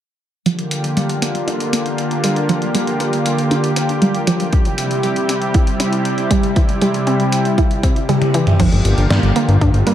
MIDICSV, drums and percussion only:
0, 0, Header, 1, 2, 480
1, 0, Start_track
1, 0, Tempo, 508475
1, 436, Time_signature, 4, 2, 24, 8
1, 9387, End_track
2, 0, Start_track
2, 0, Title_t, "Drums"
2, 434, Note_on_c, 9, 42, 61
2, 528, Note_off_c, 9, 42, 0
2, 553, Note_on_c, 9, 42, 39
2, 648, Note_off_c, 9, 42, 0
2, 673, Note_on_c, 9, 42, 88
2, 767, Note_off_c, 9, 42, 0
2, 794, Note_on_c, 9, 42, 37
2, 888, Note_off_c, 9, 42, 0
2, 915, Note_on_c, 9, 42, 63
2, 1009, Note_off_c, 9, 42, 0
2, 1034, Note_on_c, 9, 42, 37
2, 1128, Note_off_c, 9, 42, 0
2, 1154, Note_on_c, 9, 42, 89
2, 1248, Note_off_c, 9, 42, 0
2, 1274, Note_on_c, 9, 42, 39
2, 1369, Note_off_c, 9, 42, 0
2, 1395, Note_on_c, 9, 42, 67
2, 1489, Note_off_c, 9, 42, 0
2, 1515, Note_on_c, 9, 42, 38
2, 1609, Note_off_c, 9, 42, 0
2, 1634, Note_on_c, 9, 42, 91
2, 1729, Note_off_c, 9, 42, 0
2, 1754, Note_on_c, 9, 42, 39
2, 1848, Note_off_c, 9, 42, 0
2, 1873, Note_on_c, 9, 42, 66
2, 1967, Note_off_c, 9, 42, 0
2, 1993, Note_on_c, 9, 42, 39
2, 2087, Note_off_c, 9, 42, 0
2, 2112, Note_on_c, 9, 42, 91
2, 2206, Note_off_c, 9, 42, 0
2, 2232, Note_on_c, 9, 42, 39
2, 2326, Note_off_c, 9, 42, 0
2, 2352, Note_on_c, 9, 42, 64
2, 2447, Note_off_c, 9, 42, 0
2, 2472, Note_on_c, 9, 42, 40
2, 2567, Note_off_c, 9, 42, 0
2, 2592, Note_on_c, 9, 42, 89
2, 2687, Note_off_c, 9, 42, 0
2, 2713, Note_on_c, 9, 42, 40
2, 2808, Note_off_c, 9, 42, 0
2, 2833, Note_on_c, 9, 42, 63
2, 2928, Note_off_c, 9, 42, 0
2, 2955, Note_on_c, 9, 42, 39
2, 3049, Note_off_c, 9, 42, 0
2, 3075, Note_on_c, 9, 42, 91
2, 3169, Note_off_c, 9, 42, 0
2, 3195, Note_on_c, 9, 42, 38
2, 3289, Note_off_c, 9, 42, 0
2, 3314, Note_on_c, 9, 42, 64
2, 3408, Note_off_c, 9, 42, 0
2, 3433, Note_on_c, 9, 42, 40
2, 3528, Note_off_c, 9, 42, 0
2, 3553, Note_on_c, 9, 42, 91
2, 3647, Note_off_c, 9, 42, 0
2, 3673, Note_on_c, 9, 42, 39
2, 3768, Note_off_c, 9, 42, 0
2, 3793, Note_on_c, 9, 42, 65
2, 3887, Note_off_c, 9, 42, 0
2, 3913, Note_on_c, 9, 42, 38
2, 4007, Note_off_c, 9, 42, 0
2, 4033, Note_on_c, 9, 42, 93
2, 4127, Note_off_c, 9, 42, 0
2, 4153, Note_on_c, 9, 42, 39
2, 4247, Note_off_c, 9, 42, 0
2, 4272, Note_on_c, 9, 42, 64
2, 4276, Note_on_c, 9, 36, 113
2, 4367, Note_off_c, 9, 42, 0
2, 4370, Note_off_c, 9, 36, 0
2, 4392, Note_on_c, 9, 42, 36
2, 4487, Note_off_c, 9, 42, 0
2, 4512, Note_on_c, 9, 42, 87
2, 4607, Note_off_c, 9, 42, 0
2, 4634, Note_on_c, 9, 42, 38
2, 4728, Note_off_c, 9, 42, 0
2, 4752, Note_on_c, 9, 42, 59
2, 4847, Note_off_c, 9, 42, 0
2, 4874, Note_on_c, 9, 42, 38
2, 4968, Note_off_c, 9, 42, 0
2, 4994, Note_on_c, 9, 42, 88
2, 5089, Note_off_c, 9, 42, 0
2, 5113, Note_on_c, 9, 42, 36
2, 5208, Note_off_c, 9, 42, 0
2, 5233, Note_on_c, 9, 42, 65
2, 5236, Note_on_c, 9, 36, 120
2, 5328, Note_off_c, 9, 42, 0
2, 5331, Note_off_c, 9, 36, 0
2, 5354, Note_on_c, 9, 42, 39
2, 5448, Note_off_c, 9, 42, 0
2, 5474, Note_on_c, 9, 42, 95
2, 5568, Note_off_c, 9, 42, 0
2, 5594, Note_on_c, 9, 42, 39
2, 5688, Note_off_c, 9, 42, 0
2, 5713, Note_on_c, 9, 42, 63
2, 5807, Note_off_c, 9, 42, 0
2, 5833, Note_on_c, 9, 42, 38
2, 5927, Note_off_c, 9, 42, 0
2, 5953, Note_on_c, 9, 42, 87
2, 5956, Note_on_c, 9, 36, 59
2, 6048, Note_off_c, 9, 42, 0
2, 6051, Note_off_c, 9, 36, 0
2, 6074, Note_on_c, 9, 42, 37
2, 6168, Note_off_c, 9, 42, 0
2, 6194, Note_on_c, 9, 42, 62
2, 6197, Note_on_c, 9, 36, 117
2, 6288, Note_off_c, 9, 42, 0
2, 6291, Note_off_c, 9, 36, 0
2, 6313, Note_on_c, 9, 42, 37
2, 6407, Note_off_c, 9, 42, 0
2, 6433, Note_on_c, 9, 42, 81
2, 6528, Note_off_c, 9, 42, 0
2, 6554, Note_on_c, 9, 42, 36
2, 6649, Note_off_c, 9, 42, 0
2, 6674, Note_on_c, 9, 42, 59
2, 6768, Note_off_c, 9, 42, 0
2, 6795, Note_on_c, 9, 42, 37
2, 6889, Note_off_c, 9, 42, 0
2, 6914, Note_on_c, 9, 42, 90
2, 7009, Note_off_c, 9, 42, 0
2, 7036, Note_on_c, 9, 42, 38
2, 7130, Note_off_c, 9, 42, 0
2, 7156, Note_on_c, 9, 36, 118
2, 7156, Note_on_c, 9, 42, 61
2, 7250, Note_off_c, 9, 36, 0
2, 7250, Note_off_c, 9, 42, 0
2, 7277, Note_on_c, 9, 42, 38
2, 7371, Note_off_c, 9, 42, 0
2, 7396, Note_on_c, 9, 36, 101
2, 7396, Note_on_c, 9, 42, 85
2, 7490, Note_off_c, 9, 36, 0
2, 7490, Note_off_c, 9, 42, 0
2, 7517, Note_on_c, 9, 42, 37
2, 7612, Note_off_c, 9, 42, 0
2, 7637, Note_on_c, 9, 42, 61
2, 7637, Note_on_c, 9, 48, 58
2, 7732, Note_off_c, 9, 42, 0
2, 7732, Note_off_c, 9, 48, 0
2, 7756, Note_on_c, 9, 42, 37
2, 7756, Note_on_c, 9, 48, 60
2, 7850, Note_off_c, 9, 42, 0
2, 7850, Note_off_c, 9, 48, 0
2, 7875, Note_on_c, 9, 42, 89
2, 7970, Note_off_c, 9, 42, 0
2, 7995, Note_on_c, 9, 42, 37
2, 7995, Note_on_c, 9, 45, 75
2, 8090, Note_off_c, 9, 42, 0
2, 8090, Note_off_c, 9, 45, 0
2, 8115, Note_on_c, 9, 42, 67
2, 8115, Note_on_c, 9, 49, 90
2, 8116, Note_on_c, 9, 36, 116
2, 8210, Note_off_c, 9, 36, 0
2, 8210, Note_off_c, 9, 42, 0
2, 8210, Note_off_c, 9, 49, 0
2, 8236, Note_on_c, 9, 42, 41
2, 8331, Note_off_c, 9, 42, 0
2, 8355, Note_on_c, 9, 42, 90
2, 8450, Note_off_c, 9, 42, 0
2, 8476, Note_on_c, 9, 42, 38
2, 8570, Note_off_c, 9, 42, 0
2, 8596, Note_on_c, 9, 38, 111
2, 8596, Note_on_c, 9, 42, 64
2, 8690, Note_off_c, 9, 38, 0
2, 8690, Note_off_c, 9, 42, 0
2, 8715, Note_on_c, 9, 42, 39
2, 8810, Note_off_c, 9, 42, 0
2, 8835, Note_on_c, 9, 42, 92
2, 8929, Note_off_c, 9, 42, 0
2, 8955, Note_on_c, 9, 42, 40
2, 9049, Note_off_c, 9, 42, 0
2, 9076, Note_on_c, 9, 36, 120
2, 9076, Note_on_c, 9, 42, 67
2, 9170, Note_off_c, 9, 42, 0
2, 9171, Note_off_c, 9, 36, 0
2, 9195, Note_on_c, 9, 42, 42
2, 9290, Note_off_c, 9, 42, 0
2, 9314, Note_on_c, 9, 42, 94
2, 9387, Note_off_c, 9, 42, 0
2, 9387, End_track
0, 0, End_of_file